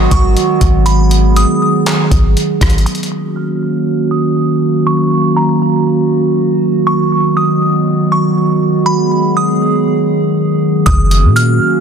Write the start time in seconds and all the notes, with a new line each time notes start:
Already playing: D#3 F#3 G#3 B3 F#4
0.11 G#1 C#6, kick, closed hi-hat
0.37 closed hi-hat
0.61 G#1, kick, closed hi-hat
0.86 G#4 B5, closed hi-hat
1.11 closed hi-hat
1.36 D#6, closed hi-hat
1.86 clap, closed hi-hat
2.11 G#1, kick, closed hi-hat
2.37 closed hi-hat
2.61 G#1, kick, cross-stick, closed hi-hat
2.70 closed hi-hat
2.78 closed hi-hat
2.86 D#3 F#3 A#3 C#4 F#4 D#6, closed hi-hat
2.95 closed hi-hat
3.03 closed hi-hat
3.36 F6
4.11 D#6
4.87 C#6
5.37 A#5
6.86 D#3 F#3 G#3 B3 C#6
7.37 D#6
8.12 C#6
8.86 G#4 B5
9.37 D#6
10.86 F#1 D#3 F#3 A#3 C#4 F#4 D#6, kick, closed hi-hat
11.11 closed hi-hat
11.24 A#2
11.36 F6, closed hi-hat